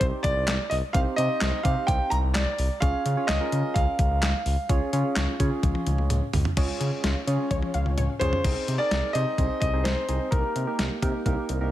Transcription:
Already playing: C4 D#4 G4 C5
0.01 C2, kick, closed hi-hat
0.23 C2 D5, kick, closed hi-hat
0.36 C2
0.48 C2, snare, clap, closed hi-hat
0.70 C2 D#5, open hi-hat
0.93 C2 C4 D#4 G4 C5 F5, kick, closed hi-hat
1.16 C3 C4 D#4 G4 C5 D#5, closed hi-hat
1.41 C2, snare, clap, closed hi-hat
1.63 C3 C4 D#4 G4 C5 F5, kick, closed hi-hat
1.87 C2 G5, kick, closed hi-hat
2.10 C2 A#5, closed hi-hat
2.23 C2
2.34 C2 D5, snare, clap, closed hi-hat
2.58 C2, open hi-hat
2.80 C#2 C#4 F4 G#4 C#5 F5, kick, closed hi-hat
3.05 C#3, closed hi-hat
3.17 C#4 F4 G#4 C#5
3.27 C#2 D#5, snare, clap, closed hi-hat
3.41 C#4 F4 G#4 A#4
3.52 C#3, closed hi-hat
3.74 C#2 F5, kick, closed hi-hat
3.99 C#2, kick, closed hi-hat
4.11 C#2
4.23 C#2, snare, clap, closed hi-hat
4.46 C#2, open hi-hat
4.69 C#2 C#4 F4 G#4 C#5, kick, closed hi-hat
4.93 C#3 C#4 F4 G#4 C#5, closed hi-hat
5.16 C#2, snare, clap, closed hi-hat
5.40 C#3 C#4 F4 G#4 C#5, kick, closed hi-hat
5.63 C#2, kick, closed hi-hat, high tom
5.75 high tom
5.87 C#2, closed hi-hat, mid tom
5.98 C#2, mid tom
6.10 C#2, closed hi-hat, mid tom
6.33 C#2, floor tom, open hi-hat
6.45 floor tom
6.57 C#2 G#3 C#4 F4 G#4 C#5, kick, closed hi-hat, crash
6.80 C#3 C#4, closed hi-hat
7.04 C#2 F4, snare, closed hi-hat
7.27 C#3 C#4 F4 G#4 C#5, closed hi-hat
7.51 C#2 C#5, kick, closed hi-hat, high tom
7.62 high tom
7.74 C#2 F5, closed hi-hat
7.86 C#2, mid tom
7.98 C#2 C#5, closed hi-hat, mid tom
8.19 C#2 C#4 F4 G#4 C5 C#5, closed hi-hat, floor tom
8.33 floor tom
8.44 C2 C4 D#4 G#4 C5, kick, closed hi-hat, crash
8.68 C3, closed hi-hat
8.78 C4 D#4 G#4 A#4 D5
8.91 C2, snare, closed hi-hat
9.13 C3 C4 D#4 G#4 C5 D#5, closed hi-hat
9.38 C2 C4 D#4 G#4 C5, kick, closed hi-hat
9.60 C2 D#5, kick, closed hi-hat
9.73 C2 C4 D#4 G#4 C5
9.84 C2 C5, snare, closed hi-hat
10.09 C2 C4 D#4 G#4 D#5, closed hi-hat
10.31 C2 A#3 D#4 G4 A#4, kick, closed hi-hat
10.56 C3, closed hi-hat
10.67 A#3 D#4 G4 A#4
10.79 C2, snare, closed hi-hat
11.02 C3 A#3 D#4 G4 A#4, kick, closed hi-hat
11.26 C2 A#3 D#4 G4 A#4, kick, closed hi-hat
11.49 C2, closed hi-hat
11.61 C2 A#3 D#4 G4 A#4

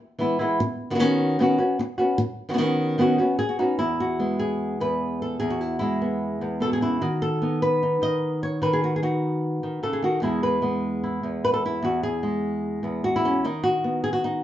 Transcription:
0.19 E3 G#3 B3 E4
0.39 E3 G#3 B3 E4
0.60 muted nylon-string guitar stroke
0.90 D#3 B3 C#4 F#4
0.95 D#3 B3 C#4 F#4
0.99 D#3 B3 C#4 F#4
1.39 D#3 B3 C#4 F#4
1.58 B3 C#4 F#4
1.79 muted nylon-string guitar stroke
1.98 B3 C#4 F#4
2.18 muted nylon-string guitar stroke
2.49 D#3 B3 C#4 F#4
2.53 D#3 B3 C#4 F#4
2.58 D#3 B3 C#4 F#4
2.98 D#3 B3 C#4 F#4
3.18 B3 C#4 F#4
3.39 G#4, muted nylon-string guitar stroke
3.49 F#4
3.59 B3 C#4 D#4 F#4
3.79 E2 E4
4.00 F#4
4.20 G#3 B3
4.39 G#4
4.80 E2 B4
5.22 A4
5.40 E2 G#4
5.50 F#4
5.61 E4
5.79 G#3 E4
6.02 B3
6.41 E2 B3
6.60 B2 A4
6.73 G#4
6.81 C#3 E4
7.01 D#3 F#4
7.22 A4
7.42 B3 D#4
7.62 B4
7.83 D#4
8.02 D#3 D#5
8.43 C#5
8.62 D#3 B4
8.73 G#4
8.84 F#4
8.96 G#4
9.03 D#4 F#4
9.63 D#3
9.83 C#3 A4
9.93 G#4
10.03 D#3 F#4
10.22 E2 G#3 E4 G#4
10.43 B4
10.62 G#3 B3
11.04 E4
11.23 E2 B3
11.45 B4
11.54 A4
11.66 E4
11.82 E2 F#4
12.03 G#4
12.23 G#3
12.83 E2 B3
13.04 F#4
13.16 E4
13.25 C#4
13.45 D#3 D#4
13.64 F#4
13.84 B3
14.04 G#4
14.13 F#4
14.24 D#4

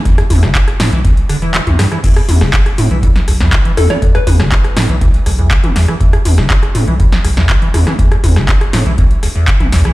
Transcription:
0.05 E1 E2, kick, closed hi-hat
0.18 E2, cross-stick, closed hi-hat
0.30 E2, kick, open hi-hat, mid tom
0.43 E1 D3, cross-stick, snare, closed hi-hat
0.55 kick, clap, closed hi-hat
0.68 cross-stick, closed hi-hat
0.80 A2, snare, open hi-hat, mid tom
0.92 B1 E3, closed hi-hat
1.05 E2, kick, closed hi-hat
1.17 closed hi-hat
1.29 E1 D3, cross-stick, open hi-hat
1.42 E3, closed hi-hat
1.54 E3, clap, closed hi-hat
1.67 B1 E2, closed hi-hat, mid tom
1.79 G2, cross-stick, snare, open hi-hat
1.92 E3, cross-stick, closed hi-hat
2.04 E1 E2, kick, closed hi-hat, crash
2.16 E2, cross-stick, closed hi-hat
2.29 E2, open hi-hat, mid tom
2.41 E1 D3, cross-stick, snare, closed hi-hat
2.53 kick, clap, closed hi-hat
2.66 cross-stick, closed hi-hat
2.78 A2, open hi-hat, mid tom
2.91 B1 E3, closed hi-hat
3.03 E2, kick, closed hi-hat
3.16 snare, closed hi-hat
3.28 B1 D2, cross-stick, open hi-hat
3.40 E2, snare, closed hi-hat
3.53 kick, clap, closed hi-hat
3.65 E1 E3, closed hi-hat
3.77 E2 A4, cross-stick, open hi-hat, mid tom
3.90 E3 D5, cross-stick, snare, closed hi-hat, mid tom
4.02 E1 E2, kick, closed hi-hat
4.15 E2 B4, cross-stick, closed hi-hat
4.27 E2 B4, kick, open hi-hat, mid tom
4.40 E1 D3, cross-stick, snare
4.52 kick, clap, closed hi-hat
4.64 cross-stick, closed hi-hat
4.77 A2, snare, open hi-hat, mid tom
4.89 B1 E3, closed hi-hat
5.01 E2, kick, closed hi-hat
5.14 closed hi-hat
5.26 B1 D2, cross-stick, open hi-hat
5.39 E2, closed hi-hat
5.51 kick, clap, closed hi-hat
5.64 E1 E3, closed hi-hat, mid tom
5.76 E2, snare, open hi-hat
5.88 E3, cross-stick, closed hi-hat
6.01 E1 E2, kick, closed hi-hat
6.13 E2, cross-stick, closed hi-hat
6.25 E2, open hi-hat, mid tom
6.38 E1 D3, cross-stick, snare, closed hi-hat
6.50 kick, clap, closed hi-hat
6.63 cross-stick, closed hi-hat
6.75 A2, open hi-hat, mid tom
6.88 B1 E3, closed hi-hat
7.00 E2, kick, closed hi-hat
7.12 snare, closed hi-hat
7.24 B1 D2, cross-stick, open hi-hat
7.37 E2, snare
7.49 kick, clap, closed hi-hat
7.62 E1 E3, closed hi-hat
7.74 E2, cross-stick, open hi-hat, mid tom
7.87 E3, cross-stick, snare, mid tom
7.99 E1 E2, kick, closed hi-hat
8.12 E2, cross-stick, closed hi-hat
8.24 E2, kick, open hi-hat, mid tom
8.36 E1 D3, cross-stick, snare
8.48 kick, clap, closed hi-hat
8.61 cross-stick, closed hi-hat
8.73 A2, snare, open hi-hat, mid tom
8.86 B1 E3, closed hi-hat
8.98 E2, kick, closed hi-hat
9.11 closed hi-hat
9.23 E1 D2, cross-stick, open hi-hat
9.35 E2, closed hi-hat
9.48 kick, clap, closed hi-hat
9.60 B1 E3, closed hi-hat, mid tom
9.72 E2, snare, open hi-hat
9.85 E3, cross-stick, closed hi-hat

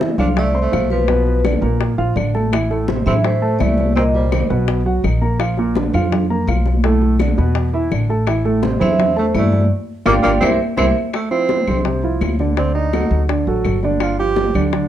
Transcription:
0.00 E3 E4 E5, high bongo, high conga
0.18 C2 F3 D4 F4 F5, high bongo, high conga, low conga, claves
0.37 A3 D5, high bongo, high conga
0.54 C4 C5 C6, high conga
0.62 A3 C5
0.72 B1 F3 F4 F5, high bongo, low bongo, high conga, claves
0.90 F3 B4, high bongo, high conga
1.08 B2 B3 B4, high bongo, high conga
1.27 high bongo, high conga
1.44 D3 D4 D5, high bongo, high conga, claves
1.61 A#1 A#2 A#3 A#4, high bongo, high conga
1.81 high bongo, high conga
1.98 A#1 F3 F4 F5, high conga
2.16 A1 D3 D4 D5, high bongo, low bongo, high conga, claves
2.34 A3 A4 A5, high bongo, high conga
2.52 E3 E4 E5, high bongo, high conga, claves
2.70 A2 A3 A4, high bongo, high conga
2.87 C3 C4 C5, high bongo, high conga
3.06 A2 E3 C4 E4 E5, high bongo, high conga, low conga, claves
3.24 A3 C5, high bongo, high conga
3.42 A3 A4 A5, high conga
3.59 C2 E3 A3 E4 D5 E5, high bongo, low bongo, high conga, claves
3.78 high bongo, high conga
3.96 A#2 A#3 C4 A#4 D#5, high bongo, high conga
4.14 G3 C5, high bongo, high conga
4.31 D#3 D#4 D#5, high bongo, high conga, claves
4.50 B1 B2 B3 B4, high bongo, high conga
4.68 high bongo
4.86 F#3 F#4 F#5, high conga
5.04 A#1 D#3 D#4 D#5, high bongo, low bongo, high conga, claves
5.21 A#3 A#4 A#5, high bongo
5.39 F3 F4 F5, high bongo, high conga, claves
5.57 A#2 A#3 A#4, high bongo, high conga
5.75 D3 D4 D5, high bongo, high conga
5.93 F2 F3 F4 F5, high bongo, high conga, low conga, claves
6.12 high bongo, high conga, low conga
6.30 A#3 A#4 A#5, high conga
6.47 B1 F3 F4 F5, high bongo, low bongo, high conga, claves
6.66 high bongo, high conga
6.84 A2 A3 A4, high bongo, high conga
7.02 high bongo, high conga
7.19 D3 D4 D5, high bongo, high conga, claves
7.37 E2 B2 B3 B4, high bongo, high conga
7.55 high bongo, high conga
7.73 E3 E4 E5, high conga
7.91 A1 D3 D4 D5, high bongo, low bongo, high conga, claves
8.09 A3 A4 A5, high bongo
8.27 E3 E4 E5, high bongo, high conga, claves
8.45 A2 A3 A4, high bongo, high conga
8.62 C3 C4 C5, high bongo, high conga
8.80 E2 E3 C4 E4 E5, high bongo, high conga, low conga, claves
8.99 high bongo, high conga, low conga
9.16 A3 A4 C5 A5, high conga
9.34 G2 E3 A3 E4 D5 E5, high bongo, low bongo, high conga, claves
9.52 high bongo, high conga
10.06 G1 A#3 D4 F4 G4 D5 F5 G5, high bongo, high conga, claves
10.23 G1 A#3 D4 F4 G4 D5 F5 G5, high bongo, high conga, claves
10.40 C2 C4 E4 G4 A#4 C5 E5, high bongo, high conga, claves
10.77 C2 C4 E4 G4 A#4 C5 E5, high bongo, high conga, claves
11.13 A3, high bongo, high conga, claves
11.31 F3 C4 E4 F4, high bongo, high conga
11.49 high bongo, high conga
11.67 C2 C3 C4 C5, high bongo, high conga, low conga, claves
11.85 C3 C4 C5, high bongo, high conga
12.03 F3 E4 F4, high conga
12.21 D2, high bongo, low bongo, high conga, claves
12.39 D3 D4 D5, high bongo, high conga
12.57 D3 C4 D4 D5, high bongo, high conga
12.75 D#4, high bongo, high conga
12.93 F#3 F#4 A4, high bongo, high conga, claves
13.11 D2, high bongo, high conga
13.29 D3 D4 D5, high bongo, high conga
13.47 A1 F#3 F#4 A4, high conga
13.65 G1, high bongo, low bongo, high conga, claves
13.83 D3 D4 D5, high bongo, high conga
14.00 F4, high bongo, high conga, claves
14.19 F3 F4 G4, high bongo, high conga
14.36 high bongo, high conga
14.54 D2 D3 D4 D5, high bongo, high conga, low conga, claves
14.72 D3 D4 D5, high bongo, high conga

